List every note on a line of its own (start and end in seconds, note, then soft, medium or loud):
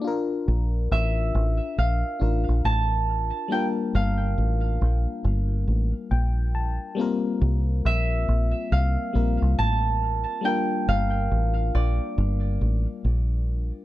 0.02 2.15 D4 medium
0.02 2.17 F4 medium
0.08 2.18 A#4 medium
0.48 0.87 A#1 loud
0.91 1.30 A1 loud
0.91 1.85 E5 medium
1.35 1.58 A1 medium
1.78 2.02 A#1 medium
1.78 3.45 F5 loud
2.20 2.45 A1 loud
2.20 3.50 D4 medium
2.20 3.51 F4 soft
2.20 3.52 A#4 medium
2.49 2.63 A#1 medium
2.64 3.30 A1 medium
2.64 4.10 A5 loud
3.48 6.92 G3 medium
3.48 6.93 A#3 medium
3.48 6.94 D4 medium
3.48 3.64 G5 loud
3.53 6.94 F4 medium
3.53 6.95 A#4 medium
3.95 4.34 G1 loud
3.95 6.51 F5 medium
4.38 4.77 A1 medium
4.81 5.05 A#1 medium
5.25 5.64 G1 loud
5.68 5.92 A1 medium
6.11 6.77 A#1 loud
6.11 6.51 G5 medium
6.55 6.95 A5 medium
6.95 9.09 G3 medium
6.95 9.10 A#3 medium
6.95 9.10 C4 medium
6.99 9.11 F4 medium
6.99 9.12 A#4 medium
7.42 7.80 C2 loud
7.85 8.24 A#1 medium
7.85 8.78 E5 loud
8.28 8.52 A#1 medium
8.72 8.95 C2 medium
8.72 10.39 F5 loud
9.13 9.39 A#1 medium
9.13 10.40 G3 soft
9.13 10.41 A#3 soft
9.13 10.44 C4 soft
9.13 10.45 F4 soft
9.13 10.45 A#4 medium
9.42 9.56 C2 medium
9.58 10.24 A1 medium
9.58 11.03 A5 loud
10.41 13.85 G3 medium
10.41 13.85 A#3 medium
10.41 13.85 D4 medium
10.41 12.00 G5 loud
10.46 13.85 F4 medium
10.46 13.85 A#4 medium
10.88 11.27 G1 loud
10.88 12.55 F5 loud
11.31 11.70 A1 medium
11.75 11.99 A#1 medium
11.75 13.59 D5 medium
12.18 12.57 G1 loud
12.61 12.85 A1 loud
13.05 13.70 A#1 medium